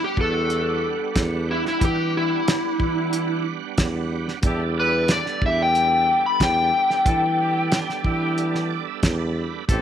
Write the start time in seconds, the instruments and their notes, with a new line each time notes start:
Already playing: tonewheel organ G3 B3 D4 F#5
0.04 electric slide guitar G4
0.17 tuba E2, horn section D4 E4 F#4, electric slide guitar A4, kick
0.50 closed hi-hat
1.15 tuba E2, kick, snare, closed hi-hat
1.51 electric slide guitar E4
1.66 electric slide guitar E4, snare
1.81 tuba E3, horn section D4 E4 G4, kick, closed hi-hat
1.85 electric slide guitar G4
2.15 horn section D4 E4 G4, electric slide guitar E4
2.48 snare, closed hi-hat
2.79 tuba E3, horn section D4 E4, kick
3.13 closed hi-hat
3.78 tuba E2, kick, snare, closed hi-hat
4.28 snare
4.42 tuba E2, tonewheel organ G3 B3 D4 A4, horn section D4 E4 G4, kick, closed hi-hat
4.77 horn section D4 E4 G4, electric slide guitar B4
5.08 electric slide guitar D5, snare, closed hi-hat
5.26 snare
5.42 tuba E2, horn section D4 E4 G4, kick
5.46 electric slide guitar E5
5.62 electric slide guitar G5
5.75 closed hi-hat
6.26 electric slide guitar B5
6.40 tuba E2, electric slide guitar G5, kick, snare, closed hi-hat
6.90 snare
7.06 tuba E3, horn section D4 E4 A4, kick, closed hi-hat
7.39 horn section D4 E4 G4
7.72 snare, closed hi-hat
7.89 snare
8.04 tuba E3, horn section D4 E4 G4, kick
8.38 closed hi-hat
8.55 snare
8.70 tonewheel organ D5
8.87 tonewheel organ E5
9.03 tuba E2, tonewheel organ G5, kick, snare, closed hi-hat
9.19 tonewheel organ B5
9.68 tuba A1, tonewheel organ G3 B3 C4 E4, horn section C4 G4 A4, kick, closed hi-hat